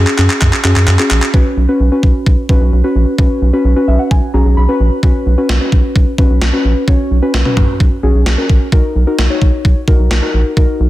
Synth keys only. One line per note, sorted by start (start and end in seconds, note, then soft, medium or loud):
0.00 0.15 C#4 medium
0.00 0.15 F#4 medium
0.00 0.15 G#4 loud
0.18 0.59 C#4 medium
0.18 0.58 F#4 medium
0.18 0.58 G#4 medium
0.65 0.95 C#4 medium
0.65 0.95 F#4 medium
0.65 0.95 G#4 medium
0.99 1.29 C#4 medium
0.99 1.29 F#4 medium
0.99 1.29 G#4 medium
1.34 1.64 C#4 medium
1.34 1.64 F#4 medium
1.34 1.64 B4 medium
1.69 1.89 C#4 medium
1.69 1.89 F#4 medium
1.69 1.89 B4 medium
1.92 2.42 C#4 medium
1.92 2.42 F#4 medium
1.92 2.42 B4 medium
2.49 2.79 C#4 medium
2.49 2.79 F#4 medium
2.49 2.79 B4 medium
2.84 3.14 C#4 medium
2.84 3.14 F#4 medium
2.84 3.14 B4 medium
3.19 3.49 C#4 medium
3.19 3.49 F#4 medium
3.19 3.49 B4 medium
3.53 3.73 C#4 medium
3.53 3.73 F#4 medium
3.53 3.73 B4 medium
3.76 4.26 C#4 medium
3.76 4.26 F#4 medium
3.76 4.26 B4 medium
3.88 3.99 E5 medium
3.99 4.10 F#5 medium
4.11 4.32 G#5 medium
4.34 4.64 C#4 medium
4.34 4.64 F#4 medium
4.34 4.64 G#4 medium
4.34 4.55 A#5 medium
4.57 5.00 B5 medium
4.69 4.99 C#4 medium
4.69 4.99 F#4 medium
4.69 4.99 B4 medium
5.03 5.33 C#4 medium
5.03 5.33 F#4 medium
5.03 5.33 B4 medium
5.38 5.58 C#4 medium
5.38 5.58 F#4 medium
5.38 5.58 B4 medium
5.61 6.11 C#4 medium
5.61 6.11 F#4 medium
5.61 6.11 B4 medium
6.19 6.49 C#4 medium
6.19 6.49 F#4 medium
6.19 6.49 B4 medium
6.53 6.83 C#4 medium
6.53 6.83 F#4 medium
6.53 6.83 B4 medium
6.88 7.18 C#4 medium
6.88 7.18 F#4 medium
6.88 7.18 C#5 medium
7.22 7.42 C#4 medium
7.22 7.42 F#4 medium
7.22 7.42 B4 medium
7.45 7.95 C#4 medium
7.45 7.96 F#4 medium
7.45 7.95 B4 medium
8.03 8.33 C#4 medium
8.03 8.33 F#4 medium
8.03 8.33 G#4 medium
8.38 8.68 C#4 medium
8.38 8.68 F#4 medium
8.38 8.68 A#4 medium
8.72 9.02 D#4 medium
8.72 9.02 F#4 medium
8.72 9.02 A#4 medium
9.07 9.27 D#4 medium
9.07 9.27 F#4 medium
9.07 9.27 A#4 medium
9.30 9.80 D#4 medium
9.30 9.80 F#4 medium
9.30 9.80 C#5 medium
9.88 10.18 D#4 medium
9.88 10.18 F#4 medium
9.88 10.18 A#4 medium
10.22 10.52 D#4 medium
10.22 10.52 F#4 medium
10.22 10.52 A#4 medium
10.57 10.87 D#4 medium
10.57 10.87 F#4 medium
10.57 10.87 A#4 medium